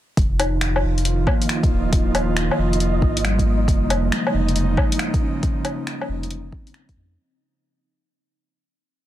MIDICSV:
0, 0, Header, 1, 6, 480
1, 0, Start_track
1, 0, Key_signature, -4, "minor"
1, 0, Tempo, 437956
1, 192, Time_signature, 4, 2, 24, 8
1, 9940, End_track
2, 0, Start_track
2, 0, Title_t, "Synth texture"
2, 0, Program_c, 0, 99
2, 191, Note_on_c, 0, 75, 87
2, 192, Note_on_c, 0, 63, 87
2, 7885, Note_off_c, 0, 63, 0
2, 7885, Note_off_c, 0, 75, 0
2, 9940, End_track
3, 0, Start_track
3, 0, Title_t, "Tine electric piano"
3, 0, Program_c, 1, 4
3, 380, Control_c, 1, 64, 127
3, 432, Note_on_c, 1, 63, 64
3, 1389, Note_on_c, 1, 58, 72
3, 2099, Note_off_c, 1, 63, 0
3, 3057, Note_off_c, 1, 58, 0
3, 3555, Note_on_c, 1, 55, 76
3, 3795, Note_on_c, 1, 58, 78
3, 4046, Control_c, 1, 64, 0
3, 4230, Note_off_c, 1, 55, 0
3, 4240, Note_off_c, 1, 58, 0
3, 4255, Control_c, 1, 64, 127
3, 4518, Note_on_c, 1, 56, 52
3, 5719, Note_on_c, 1, 61, 66
3, 6182, Note_off_c, 1, 56, 0
3, 7156, Note_on_c, 1, 60, 57
3, 7383, Note_off_c, 1, 61, 0
3, 7888, Control_c, 1, 64, 0
3, 8071, Note_off_c, 1, 60, 0
3, 9940, End_track
4, 0, Start_track
4, 0, Title_t, "Analog synth pad"
4, 0, Program_c, 2, 89
4, 187, Note_on_c, 2, 51, 76
4, 187, Note_on_c, 2, 53, 70
4, 187, Note_on_c, 2, 65, 85
4, 3991, Note_off_c, 2, 51, 0
4, 3991, Note_off_c, 2, 53, 0
4, 3991, Note_off_c, 2, 65, 0
4, 4032, Note_on_c, 2, 63, 86
4, 4033, Note_on_c, 2, 49, 78
4, 4034, Note_on_c, 2, 53, 74
4, 7834, Note_off_c, 2, 49, 0
4, 7834, Note_off_c, 2, 63, 0
4, 7835, Note_off_c, 2, 53, 0
4, 9940, End_track
5, 0, Start_track
5, 0, Title_t, "Sub bass"
5, 0, Program_c, 3, 38
5, 192, Note_on_c, 3, 29, 95
5, 902, Note_off_c, 3, 29, 0
5, 913, Note_on_c, 3, 29, 87
5, 1382, Note_off_c, 3, 29, 0
5, 1872, Note_on_c, 3, 27, 87
5, 2731, Note_off_c, 3, 27, 0
5, 2833, Note_on_c, 3, 29, 89
5, 3303, Note_off_c, 3, 29, 0
5, 3314, Note_on_c, 3, 32, 100
5, 4032, Note_on_c, 3, 29, 107
5, 4049, Note_off_c, 3, 32, 0
5, 4502, Note_off_c, 3, 29, 0
5, 4756, Note_on_c, 3, 29, 87
5, 5224, Note_off_c, 3, 29, 0
5, 6674, Note_on_c, 3, 29, 88
5, 7143, Note_off_c, 3, 29, 0
5, 7631, Note_on_c, 3, 41, 96
5, 7859, Note_off_c, 3, 41, 0
5, 9940, End_track
6, 0, Start_track
6, 0, Title_t, "Drums"
6, 189, Note_on_c, 9, 36, 112
6, 191, Note_on_c, 9, 42, 53
6, 299, Note_off_c, 9, 36, 0
6, 300, Note_off_c, 9, 42, 0
6, 434, Note_on_c, 9, 42, 55
6, 434, Note_on_c, 9, 77, 52
6, 543, Note_off_c, 9, 42, 0
6, 543, Note_off_c, 9, 77, 0
6, 672, Note_on_c, 9, 26, 100
6, 672, Note_on_c, 9, 42, 54
6, 781, Note_off_c, 9, 26, 0
6, 781, Note_off_c, 9, 42, 0
6, 832, Note_on_c, 9, 77, 52
6, 942, Note_off_c, 9, 77, 0
6, 1072, Note_on_c, 9, 42, 29
6, 1152, Note_off_c, 9, 42, 0
6, 1152, Note_on_c, 9, 42, 54
6, 1262, Note_off_c, 9, 42, 0
6, 1390, Note_on_c, 9, 36, 97
6, 1393, Note_on_c, 9, 77, 64
6, 1500, Note_off_c, 9, 36, 0
6, 1503, Note_off_c, 9, 77, 0
6, 1552, Note_on_c, 9, 42, 54
6, 1636, Note_off_c, 9, 42, 0
6, 1636, Note_on_c, 9, 26, 103
6, 1636, Note_on_c, 9, 42, 57
6, 1745, Note_off_c, 9, 26, 0
6, 1745, Note_off_c, 9, 42, 0
6, 1790, Note_on_c, 9, 36, 95
6, 1793, Note_on_c, 9, 42, 30
6, 1900, Note_off_c, 9, 36, 0
6, 1903, Note_off_c, 9, 42, 0
6, 2110, Note_on_c, 9, 36, 118
6, 2111, Note_on_c, 9, 42, 54
6, 2220, Note_off_c, 9, 36, 0
6, 2221, Note_off_c, 9, 42, 0
6, 2353, Note_on_c, 9, 42, 56
6, 2353, Note_on_c, 9, 77, 51
6, 2463, Note_off_c, 9, 42, 0
6, 2463, Note_off_c, 9, 77, 0
6, 2592, Note_on_c, 9, 26, 103
6, 2592, Note_on_c, 9, 42, 58
6, 2702, Note_off_c, 9, 26, 0
6, 2702, Note_off_c, 9, 42, 0
6, 2755, Note_on_c, 9, 77, 49
6, 2865, Note_off_c, 9, 77, 0
6, 2993, Note_on_c, 9, 42, 29
6, 3073, Note_off_c, 9, 42, 0
6, 3073, Note_on_c, 9, 42, 54
6, 3183, Note_off_c, 9, 42, 0
6, 3311, Note_on_c, 9, 36, 101
6, 3421, Note_off_c, 9, 36, 0
6, 3472, Note_on_c, 9, 42, 57
6, 3558, Note_off_c, 9, 42, 0
6, 3558, Note_on_c, 9, 26, 102
6, 3558, Note_on_c, 9, 42, 55
6, 3667, Note_off_c, 9, 26, 0
6, 3667, Note_off_c, 9, 42, 0
6, 3711, Note_on_c, 9, 36, 60
6, 3719, Note_on_c, 9, 42, 31
6, 3821, Note_off_c, 9, 36, 0
6, 3828, Note_off_c, 9, 42, 0
6, 4032, Note_on_c, 9, 36, 122
6, 4037, Note_on_c, 9, 42, 53
6, 4142, Note_off_c, 9, 36, 0
6, 4147, Note_off_c, 9, 42, 0
6, 4278, Note_on_c, 9, 42, 54
6, 4278, Note_on_c, 9, 77, 50
6, 4387, Note_off_c, 9, 42, 0
6, 4387, Note_off_c, 9, 77, 0
6, 4517, Note_on_c, 9, 26, 108
6, 4517, Note_on_c, 9, 42, 55
6, 4627, Note_off_c, 9, 26, 0
6, 4627, Note_off_c, 9, 42, 0
6, 4676, Note_on_c, 9, 77, 49
6, 4785, Note_off_c, 9, 77, 0
6, 4915, Note_on_c, 9, 42, 30
6, 4994, Note_off_c, 9, 42, 0
6, 4994, Note_on_c, 9, 42, 55
6, 5104, Note_off_c, 9, 42, 0
6, 5232, Note_on_c, 9, 36, 105
6, 5234, Note_on_c, 9, 77, 63
6, 5342, Note_off_c, 9, 36, 0
6, 5344, Note_off_c, 9, 77, 0
6, 5394, Note_on_c, 9, 42, 54
6, 5472, Note_off_c, 9, 42, 0
6, 5472, Note_on_c, 9, 26, 108
6, 5472, Note_on_c, 9, 42, 55
6, 5582, Note_off_c, 9, 26, 0
6, 5582, Note_off_c, 9, 42, 0
6, 5631, Note_on_c, 9, 36, 106
6, 5633, Note_on_c, 9, 42, 31
6, 5741, Note_off_c, 9, 36, 0
6, 5743, Note_off_c, 9, 42, 0
6, 5950, Note_on_c, 9, 42, 54
6, 5951, Note_on_c, 9, 36, 116
6, 6060, Note_off_c, 9, 36, 0
6, 6060, Note_off_c, 9, 42, 0
6, 6189, Note_on_c, 9, 42, 54
6, 6189, Note_on_c, 9, 77, 49
6, 6298, Note_off_c, 9, 42, 0
6, 6298, Note_off_c, 9, 77, 0
6, 6434, Note_on_c, 9, 26, 105
6, 6434, Note_on_c, 9, 42, 54
6, 6543, Note_off_c, 9, 26, 0
6, 6543, Note_off_c, 9, 42, 0
6, 6592, Note_on_c, 9, 77, 49
6, 6701, Note_off_c, 9, 77, 0
6, 6831, Note_on_c, 9, 42, 29
6, 6910, Note_off_c, 9, 42, 0
6, 6910, Note_on_c, 9, 42, 53
6, 7020, Note_off_c, 9, 42, 0
6, 7151, Note_on_c, 9, 36, 103
6, 7260, Note_off_c, 9, 36, 0
6, 7309, Note_on_c, 9, 42, 54
6, 7389, Note_off_c, 9, 42, 0
6, 7389, Note_on_c, 9, 26, 108
6, 7389, Note_on_c, 9, 42, 56
6, 7499, Note_off_c, 9, 26, 0
6, 7499, Note_off_c, 9, 42, 0
6, 7549, Note_on_c, 9, 42, 30
6, 7550, Note_on_c, 9, 36, 61
6, 7659, Note_off_c, 9, 42, 0
6, 7660, Note_off_c, 9, 36, 0
6, 9940, End_track
0, 0, End_of_file